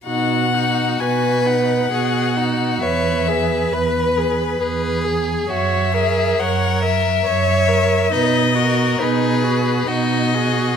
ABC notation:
X:1
M:3/4
L:1/8
Q:1/4=67
K:B
V:1 name="Violin"
f2 g f3 | e2 B3 z | e2 f e3 | d2 B2 d2 |]
V:2 name="Violin"
D F B2 G F | c B3 G2 | F G A2 c2 | B A G2 F G |]
V:3 name="Viola"
F D F D F D | B G B G B G | c A c A c A | D F D F D F |]
V:4 name="Cello" clef=bass
B,,2 B,,2 B,,2 | E,,2 E,,2 E,,2 | F,,2 F,,2 F,,2 | B,,2 B,,2 B,,2 |]